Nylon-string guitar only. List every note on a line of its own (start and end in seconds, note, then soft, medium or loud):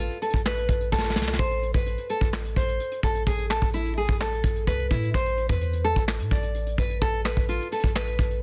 0.00 0.17 F4 medium
0.22 0.40 A4 medium
0.46 0.90 B4 medium
0.92 1.36 A4 medium
1.39 1.72 C5 medium
1.74 2.07 B4 medium
2.10 2.28 A4 medium
2.57 3.01 C5 medium
3.04 3.22 A4 medium
3.27 3.45 G#4 loud
3.50 3.68 A4 medium
3.74 3.92 E4 medium
3.98 4.15 G#4 medium
4.21 4.65 A4 medium
4.68 4.86 B4 medium
4.91 5.09 E4 medium
5.15 5.47 C5 loud
5.50 5.83 B4 medium
5.84 6.03 A4 medium
6.32 6.76 D5 medium
6.78 6.97 B4 medium
7.02 7.20 A4 loud
7.25 7.43 B4 medium
7.49 7.67 F4 medium
7.72 7.90 A4 medium
7.96 8.40 B4 medium